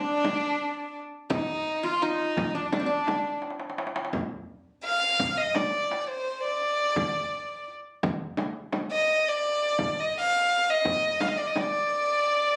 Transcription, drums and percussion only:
0.07 darbuka ka soft
0.25 darbuka tek medium
0.25 frame drum medium
1.30 frame drum loud
1.30 darbuka dum loud
2.37 darbuka dum medium
2.37 frame drum medium
2.72 darbuka tek medium
2.72 frame drum medium
2.89 darbuka ka soft
3.07 darbuka tek medium
3.07 frame drum medium
3.25 darbuka ka soft
3.42 darbuka tek medium
3.50 darbuka ka medium
3.60 darbuka tek medium
3.70 darbuka ka medium
3.78 darbuka tek medium
3.87 darbuka ka medium
3.96 darbuka tek medium
4.05 darbuka ka medium
4.13 frame drum medium
4.13 darbuka dum medium
4.85 darbuka ka soft
5.19 frame drum medium
5.19 darbuka dum medium
5.55 darbuka tek medium
5.55 frame drum medium
5.73 darbuka ka soft
5.91 darbuka tek medium
6.62 darbuka ka soft
6.96 frame drum medium
6.96 darbuka dum medium
7.68 darbuka ka soft
8.03 frame drum medium
8.03 darbuka dum medium
8.37 darbuka tek medium
8.37 frame drum medium
8.55 darbuka ka soft
8.72 darbuka tek medium
8.72 frame drum medium
9.45 darbuka ka soft
9.79 frame drum medium
9.79 darbuka dum medium
10.50 darbuka ka soft
10.85 frame drum medium
10.85 darbuka dum medium
11.21 darbuka tek medium
11.21 frame drum medium
11.39 darbuka ka soft
11.56 darbuka tek medium
11.56 frame drum medium
12.26 darbuka ka soft

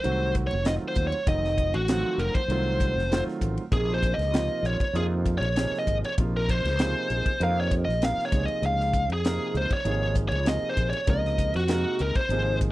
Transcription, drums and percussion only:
0.04 hi-hat pedal medium
0.04 ride medium
0.35 kick medium
0.35 hi-hat pedal medium
0.35 ride medium
0.51 ride medium
0.65 snare loud
0.65 hi-hat pedal medium
0.65 ride medium
0.95 kick medium
0.95 hi-hat pedal medium
0.95 ride medium
1.12 ride medium
1.27 kick loud
1.27 hi-hat pedal medium
1.27 ride medium
1.44 snare soft
1.58 kick medium
1.58 hi-hat pedal medium
1.58 ride medium
1.74 ride medium
1.88 snare loud
1.88 hi-hat pedal medium
1.88 ride medium
2.19 hi-hat pedal medium
2.19 ride medium
2.35 kick medium
2.35 ride medium
2.50 hi-hat pedal medium
2.50 ride medium
2.80 kick medium
2.80 hi-hat pedal medium
2.80 ride medium
2.99 snare soft
3.12 snare loud
3.12 hi-hat pedal medium
3.12 ride medium
3.28 snare soft
3.41 kick medium
3.41 hi-hat pedal medium
3.41 ride medium
3.58 ride medium
3.72 kick loud
3.72 hi-hat pedal medium
3.72 ride medium
4.03 kick medium
4.03 hi-hat pedal medium
4.03 ride medium
4.19 snare soft
4.19 ride medium
4.34 snare loud
4.34 hi-hat pedal medium
4.34 ride medium
4.65 hi-hat pedal medium
4.65 ride medium
4.80 kick medium
4.80 ride medium
4.95 hi-hat pedal medium
4.95 ride medium
5.26 kick medium
5.26 hi-hat pedal medium
5.26 ride medium
5.42 ride medium
5.56 snare loud
5.56 hi-hat pedal medium
5.56 ride medium
5.74 snare soft
5.87 kick medium
5.87 hi-hat pedal medium
5.87 ride medium
6.04 ride medium
6.18 kick loud
6.18 hi-hat pedal medium
6.18 ride medium
6.49 kick medium
6.49 hi-hat pedal medium
6.49 ride medium
6.65 snare soft
6.65 ride medium
6.79 snare loud
6.79 hi-hat pedal medium
6.79 ride medium
7.10 hi-hat pedal medium
7.10 ride medium
7.26 kick medium
7.26 ride medium
7.41 hi-hat pedal medium
7.41 ride medium
7.71 kick medium
7.71 hi-hat pedal medium
7.71 ride medium
7.89 snare soft
8.02 snare medium
8.02 hi-hat pedal medium
8.02 ride medium
8.19 snare soft
8.32 kick medium
8.32 hi-hat pedal medium
8.32 ride medium
8.48 ride medium
8.63 hi-hat pedal medium
8.63 ride medium
8.80 snare soft
8.93 kick medium
8.93 hi-hat pedal medium
8.93 ride medium
9.10 ride medium
9.25 snare loud
9.25 hi-hat pedal medium
9.25 ride medium
9.55 hi-hat pedal medium
9.55 ride medium
9.70 kick medium
9.70 ride medium
9.85 hi-hat pedal medium
9.85 ride medium
10.15 kick medium
10.15 hi-hat pedal medium
10.15 ride medium
10.32 ride medium
10.46 snare loud
10.46 hi-hat pedal medium
10.46 ride medium
10.77 kick medium
10.77 hi-hat pedal medium
10.77 ride medium
10.93 ride medium
11.07 kick loud
11.07 hi-hat pedal medium
11.07 ride medium
11.25 snare soft
11.38 kick medium
11.38 hi-hat pedal medium
11.38 ride medium
11.54 snare soft
11.54 ride medium
11.68 snare loud
11.68 hi-hat pedal medium
11.68 ride medium
11.99 hi-hat pedal medium
11.99 ride medium
12.15 kick medium
12.15 ride medium
12.30 hi-hat pedal medium
12.30 ride medium
12.61 kick medium
12.61 hi-hat pedal medium
12.61 ride medium

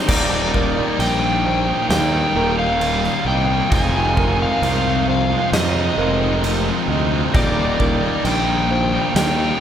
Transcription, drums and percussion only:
0.08 kick loud
0.08 crash loud
0.08 crash medium
0.54 kick medium
1.00 crash medium
1.91 snare loud
1.91 crash medium
2.81 crash medium
3.04 snare soft
3.72 kick loud
3.72 crash medium
4.17 kick medium
4.63 crash medium
5.54 snare loud
5.54 crash medium
6.44 crash medium
7.35 kick loud
7.35 crash medium
7.80 kick medium
8.25 crash medium
9.16 snare loud
9.16 crash medium

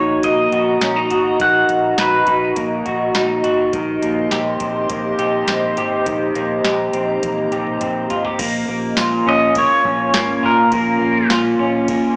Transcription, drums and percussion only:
0.23 kick medium
0.23 closed hi-hat medium
0.52 closed hi-hat soft
0.81 snare medium
0.81 closed hi-hat medium
1.10 closed hi-hat soft
1.40 kick loud
1.40 closed hi-hat medium
1.69 closed hi-hat soft
1.98 snare medium
1.98 closed hi-hat medium
2.27 kick medium
2.27 closed hi-hat soft
2.56 kick medium
2.56 closed hi-hat medium
2.86 kick medium
2.86 closed hi-hat soft
3.15 snare loud
3.15 closed hi-hat medium
3.44 closed hi-hat soft
3.73 kick loud
3.73 closed hi-hat medium
4.02 closed hi-hat medium
4.31 snare medium
4.31 closed hi-hat medium
4.60 kick medium
4.60 closed hi-hat medium
4.90 kick medium
4.90 closed hi-hat medium
5.19 closed hi-hat soft
5.48 snare medium
5.48 closed hi-hat medium
5.77 closed hi-hat soft
6.06 kick medium
6.06 closed hi-hat medium
6.35 closed hi-hat soft
6.65 snare medium
6.65 closed hi-hat medium
6.93 closed hi-hat soft
7.23 kick medium
7.23 closed hi-hat medium
7.23 high tom soft
7.38 high tom soft
7.52 closed hi-hat soft
7.67 mid tom medium
7.81 closed hi-hat medium
7.81 mid tom medium
8.10 closed hi-hat soft
8.10 floor tom medium
8.25 floor tom medium
8.39 kick loud
8.39 crash medium
8.39 ride medium
8.97 snare loud
8.97 ride medium
8.97 tambourine medium
9.55 kick loud
9.55 ride medium
9.85 kick medium
10.14 snare loud
10.14 ride medium
10.14 tambourine medium
10.72 kick loud
10.72 ride medium
11.30 snare medium
11.30 ride medium
11.30 tambourine medium
11.88 kick loud
11.88 ride medium

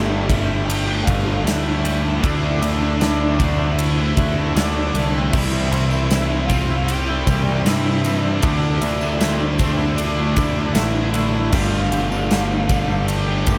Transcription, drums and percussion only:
0.30 kick loud
0.30 ride medium
0.70 ride loud
1.07 kick loud
1.07 ride medium
1.47 snare loud
1.47 ride loud
1.85 ride medium
2.24 kick loud
2.24 ride loud
2.62 ride medium
3.01 snare loud
3.01 ride medium
3.40 kick medium
3.40 ride medium
3.79 ride loud
4.17 kick medium
4.17 ride medium
4.56 snare loud
4.56 ride loud
4.95 ride medium
5.33 kick loud
5.33 crash loud
5.33 tambourine soft
5.53 tambourine soft
5.72 ride medium
5.72 tambourine soft
5.91 tambourine medium
6.11 snare loud
6.11 ride loud
6.11 tambourine medium
6.30 tambourine soft
6.50 kick medium
6.50 ride medium
6.50 tambourine medium
6.70 tambourine soft
6.88 ride loud
6.88 tambourine soft
7.27 kick medium
7.27 ride medium
7.27 tambourine medium
7.47 tambourine soft
7.66 snare loud
7.66 ride loud
7.66 tambourine loud
7.86 tambourine soft
8.04 ride medium
8.04 tambourine medium
8.42 kick loud
8.42 ride loud
8.63 tambourine soft
8.82 ride medium
8.82 tambourine soft
9.01 tambourine medium
9.21 snare loud
9.21 ride loud
9.21 tambourine medium
9.41 tambourine soft
9.58 kick medium
9.58 ride medium
9.58 tambourine medium
9.79 tambourine soft
9.98 ride loud
9.98 tambourine soft
10.36 kick medium
10.36 ride medium
10.36 tambourine medium
10.56 tambourine soft
10.75 snare loud
10.75 ride loud
10.75 tambourine loud
10.95 tambourine soft
11.14 ride medium
11.14 tambourine medium
11.52 kick loud
11.52 tambourine soft
11.52 crash loud
11.74 tambourine soft
11.92 ride medium
11.92 tambourine soft
12.12 tambourine medium
12.31 snare loud
12.31 ride medium
12.31 tambourine medium
12.52 tambourine soft
12.69 kick loud
12.69 ride medium
12.69 tambourine medium
12.90 tambourine soft
13.08 ride loud
13.08 tambourine soft
13.47 kick loud
13.47 ride medium
13.47 tambourine medium

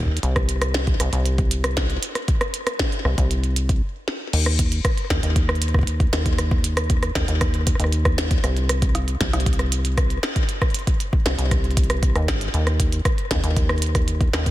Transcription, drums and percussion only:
0.00 kick medium
0.03 kick medium
0.05 kick medium
0.08 kick soft
0.17 closed hi-hat soft
0.23 closed hi-hat soft
0.36 kick loud
0.36 cross-stick medium
0.36 closed hi-hat soft
0.49 closed hi-hat medium
0.62 cross-stick medium
0.62 closed hi-hat soft
0.74 snare loud
0.74 closed hi-hat soft
0.87 kick loud
0.87 closed hi-hat soft
1.00 cross-stick medium
1.00 closed hi-hat medium
1.13 closed hi-hat medium
1.26 closed hi-hat soft
1.38 kick loud
1.38 closed hi-hat soft
1.51 closed hi-hat medium
1.64 cross-stick medium
1.64 closed hi-hat soft
1.77 kick loud
1.77 snare loud
1.77 closed hi-hat medium
1.90 closed hi-hat soft
2.03 closed hi-hat medium
2.15 cross-stick soft
2.15 closed hi-hat soft
2.28 kick loud
2.28 closed hi-hat soft
2.41 cross-stick medium
2.41 closed hi-hat soft
2.54 closed hi-hat medium
2.67 cross-stick medium
2.67 closed hi-hat medium
2.79 kick medium
2.79 snare loud
2.79 closed hi-hat soft
2.92 closed hi-hat soft
3.05 cross-stick medium
3.18 kick loud
3.18 closed hi-hat soft
3.31 closed hi-hat soft
3.44 closed hi-hat soft
3.56 closed hi-hat medium
3.69 kick loud
3.69 closed hi-hat medium
4.08 snare medium
4.33 closed hi-hat medium
4.33 crash medium
4.46 cross-stick medium
4.46 closed hi-hat soft
4.59 kick loud
4.59 closed hi-hat medium
4.72 closed hi-hat medium
4.85 kick loud
4.85 cross-stick medium
4.85 closed hi-hat medium
4.98 closed hi-hat soft
5.10 kick loud
5.10 cross-stick medium
5.10 snare loud
5.10 closed hi-hat loud
5.23 closed hi-hat medium
5.36 kick loud
5.36 closed hi-hat medium
5.49 cross-stick medium
5.49 closed hi-hat soft
5.55 closed hi-hat soft
5.62 closed hi-hat loud
5.68 closed hi-hat soft
5.74 kick loud
5.74 cross-stick medium
5.79 kick medium
5.83 kick medium
5.87 closed hi-hat medium
6.00 kick loud
6.00 closed hi-hat soft
6.13 cross-stick medium
6.13 snare loud
6.13 closed hi-hat loud
6.26 kick loud
6.26 closed hi-hat medium
6.39 cross-stick medium
6.39 closed hi-hat medium
6.51 kick loud
6.64 closed hi-hat medium
6.77 cross-stick medium
6.77 closed hi-hat medium
6.90 kick loud
6.90 closed hi-hat medium
7.03 cross-stick medium
7.03 closed hi-hat soft
7.15 kick loud
7.15 snare loud
7.15 closed hi-hat loud
7.28 closed hi-hat medium
7.41 kick loud
7.41 cross-stick medium
7.41 closed hi-hat medium
7.54 closed hi-hat soft
7.67 kick loud
7.67 cross-stick soft
7.67 closed hi-hat loud
7.75 cross-stick soft
7.80 closed hi-hat medium
7.84 cross-stick soft
7.92 closed hi-hat medium
8.05 kick loud
8.05 cross-stick medium
8.05 closed hi-hat soft
8.18 snare loud
8.18 closed hi-hat medium
8.31 kick loud
8.31 closed hi-hat medium
8.44 cross-stick medium
8.44 closed hi-hat medium
8.57 closed hi-hat soft
8.69 cross-stick medium
8.69 closed hi-hat loud
8.82 kick loud
8.82 closed hi-hat medium
8.95 cross-stick soft
8.95 closed hi-hat medium
9.08 closed hi-hat soft
9.21 kick loud
9.21 snare loud
9.21 closed hi-hat loud
9.33 cross-stick medium
9.33 closed hi-hat soft
9.40 closed hi-hat soft
9.46 kick loud
9.46 closed hi-hat medium
9.53 closed hi-hat soft
9.59 cross-stick soft
9.59 closed hi-hat soft
9.72 closed hi-hat medium
9.85 closed hi-hat medium
9.97 kick loud
9.97 cross-stick medium
9.97 closed hi-hat medium
10.10 closed hi-hat soft
10.23 cross-stick medium
10.23 snare loud
10.23 closed hi-hat medium
10.36 kick loud
10.36 closed hi-hat medium
10.49 closed hi-hat soft
10.62 kick loud
10.62 cross-stick medium
10.62 closed hi-hat soft
10.70 closed hi-hat soft
10.74 closed hi-hat medium
10.79 closed hi-hat soft
10.87 kick loud
10.87 closed hi-hat soft
11.00 closed hi-hat medium
11.13 kick loud
11.26 cross-stick medium
11.26 snare loud
11.26 closed hi-hat medium
11.39 closed hi-hat medium
11.51 kick loud
11.51 cross-stick soft
11.51 closed hi-hat medium
11.64 closed hi-hat soft
11.71 closed hi-hat soft
11.77 kick loud
11.77 closed hi-hat medium
11.84 closed hi-hat soft
11.90 cross-stick medium
11.90 closed hi-hat soft
12.03 kick loud
12.03 closed hi-hat medium
12.16 cross-stick medium
12.16 closed hi-hat soft
12.28 kick loud
12.28 snare loud
12.28 closed hi-hat medium
12.41 closed hi-hat medium
12.54 closed hi-hat soft
12.67 cross-stick medium
12.67 closed hi-hat soft
12.80 kick loud
12.80 closed hi-hat medium
12.92 closed hi-hat medium
13.05 kick loud
13.05 cross-stick medium
13.05 closed hi-hat soft
13.18 closed hi-hat soft
13.31 kick loud
13.31 cross-stick soft
13.31 snare loud
13.31 closed hi-hat medium
13.44 closed hi-hat soft
13.56 kick loud
13.56 closed hi-hat medium
13.69 cross-stick medium
13.69 closed hi-hat soft
13.78 closed hi-hat soft
13.82 closed hi-hat medium
13.86 closed hi-hat soft
13.95 kick loud
13.95 cross-stick soft
13.95 closed hi-hat soft
14.08 closed hi-hat soft
14.21 kick loud
14.21 closed hi-hat soft
14.33 cross-stick medium
14.33 snare loud
14.33 closed hi-hat medium
14.46 kick loud
14.46 closed hi-hat soft

